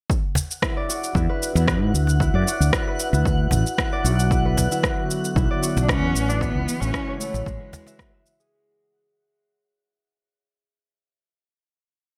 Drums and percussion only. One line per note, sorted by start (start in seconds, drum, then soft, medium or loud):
0.10 kick medium
0.10 shaker soft
0.35 cajon bass medium
0.35 shaker medium
0.51 shaker soft
0.62 kick loud
0.62 cross-stick loud
0.62 shaker soft
0.90 shaker medium
1.04 shaker soft
1.15 kick medium
1.15 shaker soft
1.43 shaker medium
1.56 cajon slap medium
1.56 shaker soft
1.68 kick loud
1.68 cross-stick medium
1.68 shaker soft
1.95 shaker medium
2.07 cajon slap soft
2.07 shaker soft
2.20 kick medium
2.20 shaker soft
2.48 shaker medium
2.62 shaker soft
2.73 kick medium
2.73 cross-stick loud
2.73 shaker soft
3.00 shaker medium
3.13 cajon slap soft
3.13 shaker soft
3.26 kick loud
3.26 shaker soft
3.51 cajon bass medium
3.51 shaker medium
3.67 shaker soft
3.78 kick loud
3.78 cross-stick loud
3.78 shaker soft
4.05 shaker medium
4.20 shaker soft
4.31 kick loud
4.31 shaker soft
4.57 cajon bass medium
4.57 shaker medium
4.72 shaker soft
4.83 kick loud
4.83 cross-stick medium
4.83 shaker soft
5.11 shaker medium
5.25 shaker soft
5.36 kick loud
5.36 shaker soft
5.63 shaker medium
5.77 cajon slap medium
5.77 shaker soft
5.89 kick loud
5.89 cross-stick loud
5.89 shaker soft
6.16 shaker medium
6.28 cajon slap soft
6.28 shaker soft
6.41 kick loud
6.41 shaker soft
6.69 shaker medium
6.82 shaker soft
6.94 kick loud
6.94 cross-stick medium
6.94 shaker soft
7.21 shaker medium
7.34 cajon slap soft
7.34 shaker soft
7.46 kick loud
7.46 shaker soft
7.73 cajon bass loud
7.73 shaker medium
7.87 cajon slap medium
7.87 shaker soft
7.99 kick loud
7.99 cross-stick medium
7.99 shaker soft
8.26 shaker medium
8.40 shaker soft